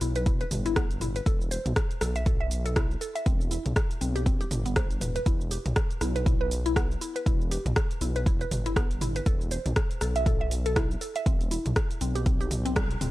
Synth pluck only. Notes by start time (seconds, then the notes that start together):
0.01 E4
0.16 B4
0.26 E4
0.41 B4
0.66 E4
0.76 B3
1.01 E4
1.16 B4
1.26 A4
1.51 C5
2.01 A4
2.16 E5
2.26 A4
2.40 E5
2.66 A4
2.76 E4
3.01 A4
3.15 E5
3.26 C4
3.51 E4
4.01 C4
4.16 G4
4.26 C4
4.41 G4
4.66 B3
4.76 C5
5.01 B4
5.16 B4
5.26 E4
5.51 G4
6.01 E4
6.16 B4
6.26 E4
6.41 B4
6.66 E4
6.76 B3
7.01 E4
7.16 B4
7.26 E4
7.51 G4
8.01 E4
8.16 B4
8.26 E4
8.41 B4
8.66 E4
8.77 B3
9.01 E4
9.16 B4
9.26 A4
9.51 C5
10.01 A4
10.16 E5
10.26 A4
10.41 E5
10.66 A4
10.76 E4
11.01 A4
11.16 E5
11.26 C4
11.51 E4
12.01 C4
12.15 G4
12.26 C4
12.41 G4
12.65 C4
12.76 G3
13.01 C4